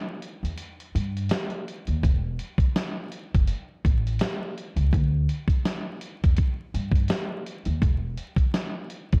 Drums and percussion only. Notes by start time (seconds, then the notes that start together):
0.22 closed hi-hat
0.45 closed hi-hat
0.58 closed hi-hat
0.80 closed hi-hat
0.96 closed hi-hat
1.17 closed hi-hat
1.29 snare, closed hi-hat
1.50 closed hi-hat
1.68 closed hi-hat
1.87 closed hi-hat
2.03 kick, closed hi-hat
2.39 closed hi-hat
2.58 kick, closed hi-hat
2.76 snare, closed hi-hat
3.12 closed hi-hat
3.35 kick, closed hi-hat
3.47 closed hi-hat
3.85 kick, closed hi-hat
4.07 closed hi-hat
4.19 snare, closed hi-hat
4.58 closed hi-hat
4.77 closed hi-hat
4.93 kick, closed hi-hat
5.29 closed hi-hat
5.48 kick, closed hi-hat
5.65 snare, closed hi-hat
6.01 closed hi-hat
6.24 kick, closed hi-hat
6.37 kick, closed hi-hat
6.75 closed hi-hat
6.92 kick
6.96 closed hi-hat
7.08 snare, closed hi-hat
7.46 closed hi-hat
7.65 closed hi-hat
7.82 kick, closed hi-hat
8.18 closed hi-hat
8.36 kick, closed hi-hat
8.54 snare, closed hi-hat
8.90 closed hi-hat
9.12 kick, closed hi-hat